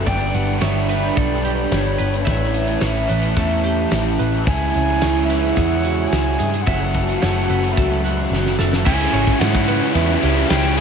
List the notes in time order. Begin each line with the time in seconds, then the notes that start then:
0.05 G1 G2 D3 G3 B3 D4 B4 D5 G5, kick, closed hi-hat
0.34 G1 F#5, closed hi-hat
0.61 G1 D3 G3 B3 D4 C#5 E5, snare, closed hi-hat
0.89 G3 B3 D4 B4, closed hi-hat
1.15 B1 G2 D3 G3 B3 D4 A4 D5, kick, closed hi-hat
1.44 G4, closed hi-hat
1.71 G1 D3 G3 B3 D4 C#5, snare, closed hi-hat
1.98 G1 B4, closed hi-hat
2.14 closed hi-hat
2.25 A1 A2 E3 A3 C#4 E4 C#5 E5 A5, kick, closed hi-hat
2.54 closed hi-hat
2.68 closed hi-hat
2.81 A1 E3 A3 C#4 E4 C#5 E5, snare, closed hi-hat
3.08 A1 A3 C#4 E4 B4, closed hi-hat
3.22 closed hi-hat
3.36 E2 A2 E3 A3 C#4 E4 A4 E5, kick, closed hi-hat
3.64 G4, closed hi-hat
3.91 A1 E3 A3 C#4 E4, snare, closed hi-hat
4.19 A1 B4, closed hi-hat
4.46 C#2 C#3 G#3 C#4 E4 C#5 E5 G#5, kick, closed hi-hat
4.74 C#2, closed hi-hat
5.01 C#2 C#3 G#3 C#4 E4 C#5, snare, closed hi-hat
5.25 E5
5.30 G#3 C#4 E4 B4, closed hi-hat
5.52 F#5
5.56 E2 C#3 G#3 C#4 E4 G#4, kick, closed hi-hat
5.84 F#4, closed hi-hat
6.08 G#5
6.12 C#2 C#3 G#3 C#4 E4, snare, closed hi-hat
6.39 G2 G#4, closed hi-hat
6.54 closed hi-hat
6.62 F#2 F#4 F#5
6.66 F#1 C#3 F#3 A3 C#4 E5 A5, kick, closed hi-hat
6.94 kick, closed hi-hat
7.09 closed hi-hat
7.17 F#5
7.21 F#1 C#3 F#3 A3 C#4 C#5, snare, closed hi-hat
7.48 F#1 F#3 A3 C#4 B4, closed hi-hat
7.64 closed hi-hat
7.73 F#2 E5
7.77 C#2 C#3 F#3 A3 C#4 A4, kick, closed hi-hat
8.04 F#4, closed hi-hat
8.31 F#1 C#3 F#3 A3 C#4, snare
8.46 snare
8.59 F#1 A4, snare
8.73 snare
8.85 C#2 C#3 G#3 C#4 E4 E5 G#5, kick, crash
9.12 G#1 G#3 C#4 E4 C#5, ride
9.27 kick
9.39 G#2 C#3 G#3 C#4 E4 F#5, snare, ride
9.55 kick
9.67 G#3 C#4 E4 B4, ride
9.92 E2 C#3 G#3 C#4 E4 B4 E5, ride
10.20 C#2 G#3 C#4 E4 G4, ride
10.24 C#3
10.49 C#2 C#3 G#3 C#4 E4 G5, snare, ride
10.77 C#4 E4 G#5, ride